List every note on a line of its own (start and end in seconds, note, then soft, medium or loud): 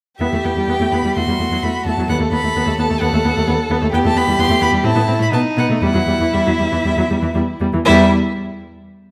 0.19 0.25 E2 medium
0.19 0.26 B3 soft
0.19 1.18 G4 soft
0.19 0.46 E5 medium
0.32 0.37 E2 soft
0.32 0.38 A3 soft
0.44 0.49 E2 soft
0.44 0.50 B3 soft
0.44 0.67 G5 medium
0.56 0.61 E2 soft
0.56 0.63 G3 soft
0.67 0.72 E2 soft
0.67 0.74 B3 soft
0.67 0.93 G5 medium
0.80 0.85 E2 soft
0.80 0.85 A3 soft
0.92 0.97 E2 soft
0.92 0.98 B3 soft
0.92 1.16 B5 medium
1.04 1.08 E2 soft
1.04 1.09 G3 soft
1.16 1.21 E2 medium
1.16 1.21 A3 soft
1.16 2.08 F#4 soft
1.16 1.65 C6 medium
1.28 1.32 E2 soft
1.28 1.33 G3 soft
1.39 1.44 E2 soft
1.39 1.45 A3 soft
1.51 1.55 E2 soft
1.51 1.57 F#3 soft
1.62 1.67 E2 medium
1.62 1.69 A3 medium
1.62 1.85 B5 medium
1.85 1.90 E2 soft
1.85 1.92 A3 soft
1.85 2.09 A5 medium
1.98 2.02 E2 soft
1.98 2.04 F#3 soft
2.09 2.13 D#2 medium
2.09 2.14 B3 medium
2.09 3.89 A4 medium
2.09 2.17 F#5 medium
2.19 2.24 D#2 soft
2.19 2.25 A3 soft
2.31 2.36 D#2 soft
2.31 2.37 B3 soft
2.31 2.77 B5 medium
2.43 2.48 D#2 soft
2.43 2.49 A3 soft
2.56 2.60 D#2 medium
2.56 2.61 B3 medium
2.67 2.71 D#2 soft
2.67 2.71 A3 soft
2.78 2.83 D#2 soft
2.78 2.84 B3 soft
2.78 3.02 A5 medium
2.89 2.95 D#2 soft
2.89 2.94 A3 soft
3.01 3.06 D#2 medium
3.01 3.06 B3 medium
3.01 3.69 F#5 medium
3.13 3.18 D#2 soft
3.13 3.18 A3 soft
3.25 3.29 D#2 soft
3.25 3.29 B3 soft
3.37 3.42 D#2 soft
3.37 3.41 A3 medium
3.47 3.52 D#2 medium
3.47 3.52 B3 medium
3.70 3.75 D#2 soft
3.70 3.75 B3 medium
3.82 3.87 D#2 medium
3.82 3.87 A3 medium
3.93 3.98 E2 medium
3.93 3.97 B3 medium
3.93 4.86 G4 medium
3.93 3.98 G5 medium
4.04 4.09 E2 medium
4.04 4.10 A3 soft
4.04 4.18 A5 medium
4.15 4.20 E2 medium
4.15 4.21 B3 soft
4.15 4.41 B5 medium
4.27 4.32 E2 soft
4.27 4.33 G3 medium
4.38 4.43 E2 medium
4.38 4.43 B3 medium
4.38 4.62 C6 medium
4.49 4.54 E2 medium
4.49 4.55 A3 medium
4.61 4.66 E2 medium
4.61 4.66 B3 soft
4.61 4.70 B5 medium
4.72 4.77 E2 medium
4.72 4.77 G3 medium
4.84 4.89 A2 medium
4.84 4.89 C4 medium
4.84 5.33 E4 medium
4.84 5.20 A5 medium
4.96 5.01 A2 soft
4.96 5.01 B3 soft
5.07 5.13 A2 soft
5.07 5.13 C4 medium
5.19 5.25 A2 medium
5.19 5.24 A3 soft
5.19 5.27 B5 medium
5.32 5.37 B2 medium
5.32 5.37 B3 medium
5.32 5.84 D#4 medium
5.32 5.41 A5 medium
5.57 5.62 B2 soft
5.57 5.63 B3 medium
5.57 5.66 F#5 medium
5.69 5.74 B2 soft
5.69 5.76 A3 medium
5.82 5.87 E2 medium
5.82 5.88 G3 medium
5.82 7.65 E4 medium
5.82 6.35 F#5 medium
5.95 6.00 E2 soft
5.95 6.00 F#3 soft
6.07 6.13 E2 soft
6.07 6.13 G3 soft
6.20 6.25 E2 soft
6.20 6.26 E3 soft
6.34 6.39 E2 medium
6.34 6.39 G3 medium
6.34 7.35 E5 medium
6.46 6.52 E2 soft
6.46 6.52 F#3 soft
6.59 6.65 E2 soft
6.59 6.64 G3 soft
6.72 6.77 E2 soft
6.72 6.77 E3 soft
6.84 6.89 E2 medium
6.84 6.90 G3 medium
6.97 7.02 E2 soft
6.97 7.03 F#3 soft
7.10 7.15 E2 soft
7.10 7.15 G3 soft
7.22 7.27 E2 soft
7.22 7.27 E3 soft
7.35 7.40 E2 medium
7.35 7.40 G3 medium
7.60 7.66 E2 soft
7.60 7.66 G3 medium
7.73 7.78 E2 soft
7.73 7.79 E3 soft
7.85 8.13 E2 medium
7.85 8.13 G3 medium
7.85 8.13 E4 medium
7.85 8.13 E5 medium